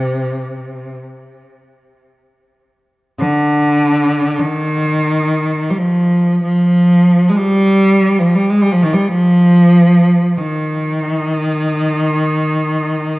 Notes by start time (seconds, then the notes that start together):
Already playing: C3
3.19 D3
4.39 D#3
5.70 G3
5.78 F3
6.42 F3
7.29 G#3
7.36 G3
8.19 F3
8.34 G3
8.49 G#3
8.61 G3
8.72 F3
8.83 D#3
8.93 G3
9.08 F3
10.38 D#3